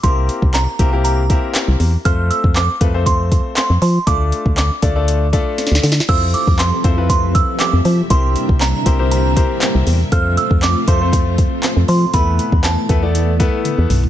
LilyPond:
<<
  \new Staff \with { instrumentName = "Synth bell" } { \time 4/4 \key f \lydian \tempo 4 = 119 c'''4 bes''4 bes''4. r8 | f'''8 e'''8 d'''4 c'''4 c'''8 c'''8 | d'''4 d'''2 r4 | e'''8 d'''8 c'''4 c'''8 e'''8 d'''4 |
c'''4 bes''4 bes''4. r8 | f'''8 e'''8 d'''8 c'''2 c'''8 | b''4 a''2 r4 | }
  \new Staff \with { instrumentName = "Grand piano" } { \time 4/4 \key f \lydian <bes c' e' g' bes'>4~ <bes c' e' g' bes'>16 r16 <bes c' e' g' bes'>16 <bes c' e' g' bes'>8 r16 <bes c' e' g' bes'>4~ <bes c' e' g' bes'>16 r16 | <a c' f' a' c''>4~ <a c' f' a' c''>16 r16 <a c' f' a' b'>16 <a c' f' a' c''>4. r8. | <a d' f' a' d''>4~ <a d' f' a' d''>16 r16 <a d' f' a' d''>16 <a d' f' a' d''>8 r16 <a d' f' a' d''>4~ <a d' f' a' d''>16 r16 | <c' e' f' a' c''>4~ <c' e' f' a' c''>16 r16 <c' e' f' a' c''>16 <c' e' f' a' b'>4. r8. |
<c' e' g' bes' c''>4~ <c' e' g' bes' c''>16 r16 <c' e' g' bes' c''>16 <c' e' g' bes' c''>8 r16 <c' e' g' bes' c''>4~ <c' e' g' bes' c''>16 r16 | <a c' f' a' c''>4~ <a c' f' a' c''>16 r16 <a c' f' a' c''>16 <a c' f' a' c''>4. r8. | <a b e' a' b'>4~ <a b e' a' b'>16 r16 <a b e' a' b'>16 <a b e' a' d''>8 r16 <a b e' a' b'>4~ <a b e' a' b'>16 r16 | }
  \new Staff \with { instrumentName = "String machine" } { \time 4/4 \key f \lydian r1 | r1 | r1 | <f c' g' a' e''>1 |
<c g bes d'>1 | <a c' f'>1 | <a b e'>1 | }
  \new Staff \with { instrumentName = "FM bass" } { \clef bass \time 4/4 \key f \lydian c,8. c,8. c,4.~ c,16 c,16 e,8 | f,8. f,8. f,4.~ f,16 f,16 f8 | d,8. d,8. d,4.~ d,16 d,16 d8 | f,8. f,8. f,4.~ f,16 f,16 f8 |
c,8. c,8. c,4.~ c,16 c,16 e,8 | f,8. f,8. f,4.~ f,16 f,16 f8 | e,8. e,8. e,4.~ e,16 e,16 b,,8 | }
  \new DrumStaff \with { instrumentName = "Drums" } \drummode { \time 4/4 <hh bd>8 hh16 bd16 <hc hh sn>8 <hh bd>8 hh8 <hh bd>8 <hc hh sn>8 hho8 | <hh bd>8 hh16 bd16 <hc hh sn>8 <hh bd>8 <hh bd>8 <hh bd>8 <hc hh sn>8 hho8 | <hh bd>8 hh16 bd16 <hc hh sn>8 <hh bd>8 hh8 <hh bd>8 \tuplet 3/2 { <hh sn>16 sn16 sn16 <hho sn>16 sn16 sn16 } | <cymc bd>8 hh16 bd16 <hc hh sn>8 <hh bd>8 <hh bd>8 <hh bd>8 <hc hh sn>8 hho8 |
<hh bd>8 hh16 bd16 <hc hh sn>8 <hh bd>8 hh8 <hh bd>8 <hc hh sn>8 hho8 | <hh bd>8 hh16 bd16 <hc hh sn>8 <hh bd>8 <hh bd>8 <hh bd>8 <hc hh sn>8 hho8 | <hh bd>8 hh16 bd16 <hc hh sn>8 <hh bd>8 hh8 <hh bd>8 <hh tommh>8 <hho toml>16 tomfh16 | }
>>